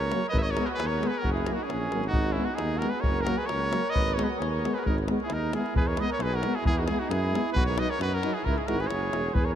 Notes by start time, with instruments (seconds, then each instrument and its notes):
Already playing: tuba C#2, flugelhorn A#4, trumpet C#5
0.12 euphonium F#3, french horn A#3, davul high
0.29 tuba G#1, flugelhorn B4, trumpet D#5
0.34 trumpet E5, davul low
0.40 flugelhorn C#5, trumpet D#5
0.51 euphonium G#3, flugelhorn A#4, trumpet C#5
0.57 french horn B3, davul high
0.65 flugelhorn F#4 G#4, trumpet A#4 B4
0.74 flugelhorn G#4, trumpet B4
0.79 tuba D#2, davul high
0.87 flugelhorn A#4, trumpet C#5
0.99 euphonium G#3, french horn B3, davul high
1.07 flugelhorn G#4, trumpet B4
1.18 trumpet A#4
1.22 tuba F#1, flugelhorn F#4, davul low
1.32 flugelhorn E4, trumpet G#4
1.37 davul high
1.46 euphonium F#3, french horn A#3, davul high
1.53 flugelhorn D#4, trumpet F#4
1.63 flugelhorn C#4, trumpet G#4
1.69 tuba A#1, davul high
1.91 tuba G#1, euphonium F#3, french horn A#3, davul high
2.04 trumpet F#4, davul high
2.09 flugelhorn D#4
2.13 tuba G#1, davul low
2.32 flugelhorn C#4, trumpet E4
2.37 euphonium G#3, french horn B3
2.45 flugelhorn D#4, trumpet F#4
2.54 flugelhorn D#4, trumpet G#4
2.58 tuba D#2, davul high
2.77 flugelhorn F#4, trumpet A#4
2.81 euphonium G#3, french horn B3, davul high
2.90 flugelhorn G#4, trumpet B4
3.01 flugelhorn A#4, trumpet C#5, davul low
3.05 tuba F#1
3.21 flugelhorn F#4, trumpet A#4
3.26 euphonium F#3, french horn A#3, davul high
3.38 flugelhorn G#4, trumpet B4
3.46 flugelhorn A#4, trumpet C#5, davul high
3.51 tuba C#2
3.71 euphonium F#3, french horn A#3, davul high
3.90 flugelhorn B4, trumpet D#5
3.95 tuba G#1, davul low
4.14 french horn B3, flugelhorn A#4, trumpet C#5
4.18 euphonium G#3, davul high
4.23 flugelhorn F#4 G#4, trumpet B4
4.36 tuba D#2, flugelhorn G#4 A#4, trumpet C#5
4.42 davul high
4.49 flugelhorn A#4, trumpet C#5
4.64 euphonium G#3, french horn B3, davul high
4.72 flugelhorn G#4, trumpet B4
4.77 flugelhorn F#4 G#4, trumpet A#4 B4
4.85 tuba G#1, flugelhorn D#4, trumpet A#4, davul low
4.98 davul high
5.08 euphonium G#3, french horn B3, davul high
5.20 trumpet G#4, davul high
5.26 tuba D#2, flugelhorn E4, davul high
5.33 flugelhorn D#4, trumpet A#4
5.53 euphonium G#3, french horn B3, flugelhorn E4, trumpet G#4, davul high
5.66 davul high
5.74 tuba E2, flugelhorn G#4, trumpet B4, davul low
5.87 flugelhorn A#4, trumpet C#5
5.97 euphonium G#3, french horn B3, flugelhorn B4, trumpet D#5, davul high
6.09 flugelhorn A#4, trumpet C#5
6.19 tuba B1, flugelhorn G#4, trumpet B4, davul high
6.34 flugelhorn F#4, trumpet A#4
6.43 euphonium G#3, french horn B3, davul high
6.55 flugelhorn E4, trumpet G#4
6.64 tuba E2, flugelhorn E4, trumpet G#4, davul low
6.78 flugelhorn D#4, trumpet F#4
6.86 euphonium G#3, french horn B3, flugelhorn E4, trumpet G#4, davul high
6.99 flugelhorn D#4, trumpet F#4
7.09 tuba F#2, flugelhorn E4, trumpet G#4, davul high
7.31 euphonium G#3, french horn B3
7.35 davul high
7.53 tuba B1, flugelhorn F#4, trumpet B4, davul low
7.66 flugelhorn A#4, trumpet C#5
7.78 euphonium F#3, french horn D#4, flugelhorn B4, trumpet D#5, davul high
7.89 flugelhorn A#4, trumpet C#5
7.99 tuba F#2, flugelhorn F#4, trumpet B4, davul high
8.13 flugelhorn F#4, trumpet A#4
8.23 euphonium F#3, french horn D#4, davul high
8.34 flugelhorn E4, trumpet G#4
8.44 tuba C#2, flugelhorn E4, trumpet A#4, davul low
8.58 flugelhorn E4, trumpet G#4, davul high
8.67 tuba G#1, euphonium G#3, french horn E4, flugelhorn F#4, trumpet A#4, davul high
8.79 flugelhorn G#4, trumpet B4, davul high
8.87 tuba F#1, flugelhorn G#4, trumpet C#5, davul high
9.12 tuba E1, euphonium G#3, french horn E4, davul high
9.33 tuba E2, flugelhorn G#4, trumpet B4, davul low
9.45 flugelhorn A#4, trumpet C#5